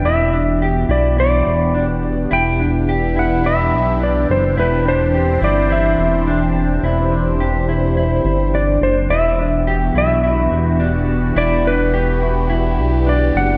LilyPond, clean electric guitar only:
\new Staff \with { instrumentName = "Clean electric guitar" } { \time 4/4 \key e \minor \tempo 4 = 106 e'8 d'8 g'8 e'8 e'4 d'4 | e'8 d'8 g'8 e'8 e'4 d'4 | e'8 d'8 g'8 e'8 e'4 d'4 | e'8 d'8 g'8 e'8 e'4 d'4 |
e'8 d'8 g'8 e'8 e'4 d'4 | e'8 d'8 g'8 e'8 e'4 d'4 | }